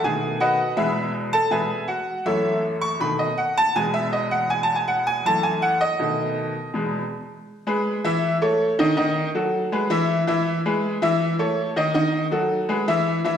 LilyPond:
<<
  \new Staff \with { instrumentName = "Upright piano" } { \time 4/4 \key e \major \tempo 4 = 161 <gis' gis''>4 <fis' b' dis'' fis''>4 <e' gis' b' e''>4 r8 <a' a''>8 | <gis' b' e'' gis''>4 <fis' fis''>4 <e' a' cis'' e''>4 r8 cis'''8 | b''8 dis''8 fis''8 a''8 gis''8 e''8 dis''8 fis''8 | \tuplet 3/2 { gis''8 a''8 gis''8 } fis''8 gis''8 a''8 gis''8 fis''8 dis''8~ |
dis''2 r2 | r8 <gis gis' b'>4 <e e' e''>4 <a a' cis''>4 <dis dis' dis''>8 | <dis dis' dis''>4 <fis fis' a'>4 <gis gis' b'>8 <e e' e''>4 <e e' e''>8~ | <e e' e''>8 <gis gis' b'>4 <e e' e''>4 <a a' cis''>4 <dis dis' dis''>8 |
<dis dis' dis''>4 <fis fis' a'>4 <gis gis' b'>8 <e e' e''>4 <e e' e''>8 | }
  \new Staff \with { instrumentName = "Upright piano" } { \clef bass \time 4/4 \key e \major <b, dis a>4. r8 <e, b, gis>4. r8 | <e, b, gis>8 r4. <fis, e a>2 | <b, dis a>8 r4. <e, b, gis>2~ | <e, b, gis>2 <fis, e a>4. r8 |
<b, dis a>4. r8 <e, b, gis>8 r4. | r1 | r1 | r1 |
r1 | }
>>